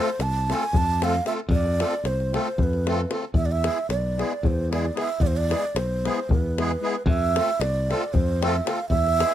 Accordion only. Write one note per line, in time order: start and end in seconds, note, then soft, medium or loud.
0.49 0.64 A3 medium
0.49 0.64 C4 medium
0.49 0.64 F4 medium
0.49 0.64 A4 medium
1.00 1.15 A3 medium
1.00 1.15 C4 medium
1.00 1.16 F4 medium
1.00 1.16 A4 medium
1.25 1.39 A3 medium
1.25 1.40 C4 soft
1.25 1.40 F4 medium
1.25 1.40 A4 medium
1.79 1.94 A3 medium
1.79 1.94 C4 soft
1.79 1.94 F4 medium
1.79 1.95 A4 medium
2.32 2.48 A3 medium
2.32 2.48 C4 medium
2.32 2.48 F4 soft
2.32 2.48 A4 medium
2.86 3.01 A3 medium
2.86 3.01 C4 medium
2.86 3.01 F4 medium
2.86 3.01 A4 medium
3.09 3.24 A3 medium
3.09 3.25 C4 medium
3.09 3.25 F4 soft
3.09 3.25 A4 medium
3.62 3.78 G#3 medium
3.62 3.79 B3 medium
3.62 3.79 E4 medium
3.62 3.79 G#4 medium
4.16 4.32 G#3 medium
4.16 4.32 B3 medium
4.16 4.33 E4 medium
4.16 4.33 G#4 medium
4.70 4.85 G#3 medium
4.70 4.85 B3 medium
4.70 4.86 E4 medium
4.70 4.86 G#4 medium
4.94 5.09 G#3 soft
4.94 5.09 B3 medium
4.94 5.10 E4 medium
4.94 5.10 G#4 medium
5.49 5.64 G#3 medium
5.49 5.64 B3 medium
5.49 5.64 E4 medium
5.49 5.65 G#4 medium
6.04 6.19 G#3 medium
6.04 6.19 B3 medium
6.04 6.19 E4 medium
6.04 6.19 G#4 medium
6.57 6.71 G#3 medium
6.57 6.72 B3 medium
6.57 6.72 E4 medium
6.57 6.72 G#4 medium
6.81 6.95 G#3 medium
6.81 6.96 B3 soft
6.81 6.96 E4 medium
6.81 6.96 G#4 medium
7.36 7.50 A3 medium
7.36 7.50 C4 medium
7.36 7.50 F4 medium
7.36 7.51 A4 medium
7.88 8.03 A3 medium
7.88 8.04 C4 medium
7.88 8.04 F4 medium
7.88 8.04 A4 medium
8.41 8.55 A3 medium
8.41 8.56 C4 medium
8.41 8.56 F4 medium
8.41 8.56 A4 medium
8.64 8.79 A3 medium
8.64 8.79 C4 medium
8.64 8.80 F4 medium
8.64 8.80 A4 medium
9.17 9.33 G#3 medium
9.17 9.33 B3 medium
9.17 9.33 E4 medium
9.17 9.34 G#4 medium